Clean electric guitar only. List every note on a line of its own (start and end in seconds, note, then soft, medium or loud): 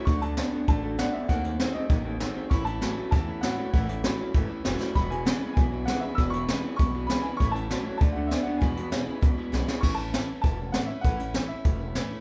0.07 0.21 D3 medium
0.07 0.21 A3 medium
0.22 0.36 D3 medium
0.22 0.36 A3 medium
0.37 0.51 D3 medium
0.37 0.51 B3 medium
0.53 0.67 D3 medium
0.53 0.67 B3 medium
0.68 0.82 D3 medium
0.68 0.82 A3 medium
0.84 0.97 D3 medium
0.84 0.97 A3 medium
0.99 1.12 D3 medium
0.99 1.12 B3 loud
1.15 1.28 D3 medium
1.15 1.28 B3 medium
1.29 1.43 D#3 medium
1.29 1.43 A#3 medium
1.44 1.58 D#3 medium
1.44 1.58 A#3 medium
1.59 1.73 D#3 medium
1.59 1.74 C4 medium
1.75 1.88 D#3 medium
1.75 1.89 C4 medium
1.89 2.03 D#3 loud
1.89 2.04 A#3 medium
2.05 2.19 D#3 medium
2.05 2.19 A#3 medium
2.20 2.34 D#3 medium
2.20 2.34 C4 medium
2.35 2.49 D#3 medium
2.35 2.50 C4 medium
2.51 2.65 A2 medium
2.51 2.65 E3 medium
2.66 2.80 A2 medium
2.66 2.80 E3 medium
2.82 2.95 A2 medium
2.82 2.96 F#3 medium
2.97 3.11 A2 medium
2.97 3.11 F#3 medium
3.12 3.26 A2 medium
3.12 3.26 E3 loud
3.27 3.41 A2 medium
3.27 3.41 E3 medium
3.43 3.57 A2 medium
3.43 3.57 F#3 medium
3.58 3.72 A2 medium
3.58 3.72 F#3 medium
3.73 3.87 A2 medium
3.73 3.87 E3 medium
3.89 4.03 A2 medium
3.89 4.03 E3 medium
4.04 4.18 A2 medium
4.04 4.18 F#3 medium
4.19 4.33 A2 medium
4.19 4.33 F#3 medium
4.35 4.48 A2 medium
4.35 4.49 E3 loud
4.50 4.63 A2 medium
4.50 4.64 E3 medium
4.64 4.78 A2 medium
4.64 4.79 F#3 medium
4.80 4.94 A2 medium
4.80 4.94 F#3 loud
4.95 5.09 E2 medium
4.95 5.09 B2 medium
5.11 5.24 E2 medium
5.11 5.25 B2 medium
5.26 5.39 E2 medium
5.26 5.40 C#3 medium
5.41 5.55 E2 medium
5.41 5.55 C#3 medium
5.56 5.70 E2 medium
5.56 5.70 B2 medium
5.72 5.86 E2 medium
5.72 5.86 B2 medium
5.87 6.01 E2 medium
5.87 6.01 C#3 loud
6.02 6.16 E2 medium
6.02 6.16 C#3 medium
6.18 6.32 E2 medium
6.18 6.32 B2 loud
6.33 6.47 E2 medium
6.33 6.47 B2 medium
6.49 6.62 E2 medium
6.49 6.63 C#3 medium
6.64 6.78 E2 medium
6.64 6.78 C#3 medium
6.79 6.93 E2 medium
6.79 6.93 B2 medium
6.94 7.08 E2 medium
6.94 7.08 B2 medium
7.09 7.23 E2 medium
7.09 7.23 C#3 medium
7.24 7.38 E2 medium
7.24 7.38 C#3 loud
7.40 7.53 A2 medium
7.40 7.54 E3 medium
7.55 7.69 A2 medium
7.55 7.69 E3 medium
7.70 7.84 A2 loud
7.70 7.84 F#3 loud
7.85 7.99 A2 medium
7.85 7.99 F#3 medium
8.01 8.15 D3 medium
8.01 8.15 A3 medium
8.16 8.30 D3 medium
8.16 8.30 A3 medium
8.31 8.45 D3 medium
8.31 8.45 B3 medium
8.47 8.60 D3 medium
8.47 8.60 B3 medium
8.62 8.75 E2 medium
8.62 8.76 B2 loud
8.76 8.90 E2 medium
8.76 8.91 B2 medium
8.92 9.06 E2 medium
8.92 9.06 C#3 medium
9.07 9.21 E2 medium
9.07 9.21 C#3 medium
9.23 9.36 E2 medium
9.23 9.36 B2 medium
9.38 9.51 E2 medium
9.38 9.52 B2 medium
9.53 9.66 E2 medium
9.53 9.67 C#3 loud
9.68 9.82 E2 medium
9.68 9.82 C#3 medium